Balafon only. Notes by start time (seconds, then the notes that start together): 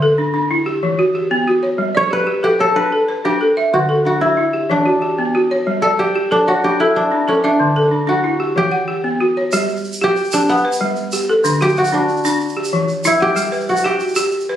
Already playing: D3
0.02 A4
0.18 D4
0.34 D4
0.51 E4
0.66 G4
0.83 E3
0.99 F#4
1.15 G4
1.31 B3
1.48 F#4
1.63 C#5
1.78 G3
1.95 D5
2.11 G4
2.27 G4
2.43 A4
2.59 C#5
2.76 D4
2.92 A4
3.08 B4
3.25 D4
3.41 A4
3.57 E5
3.73 D3
3.89 A4
4.05 D4
4.21 D4
4.37 E4
4.53 G4
4.70 E3
4.86 F#4
5.02 G4
5.18 B3
5.35 F#4
5.51 C#5
5.67 G3
5.84 D5
5.99 G4
6.15 G4
6.31 A4
6.48 C#5
6.64 D4
6.80 A4
7.12 D4
7.28 A4
7.44 E5
7.60 D3
7.76 A4
7.91 D4
8.07 D4
8.24 E4
8.40 G4
8.56 E3
8.71 F#5
8.88 G4
9.04 B3
9.20 F#4
9.37 C#5
9.53 G3 G4
10.02 G4
10.33 G4
10.65 B4
10.81 G3
11.13 G4
11.29 A4
11.44 D3 D4
11.61 F#4
11.93 D4
12.25 D4
12.57 G4
12.73 E3
13.05 E4
13.20 F#5
13.36 G3 G4
13.52 B4
13.84 G4
14.16 G4
14.49 B4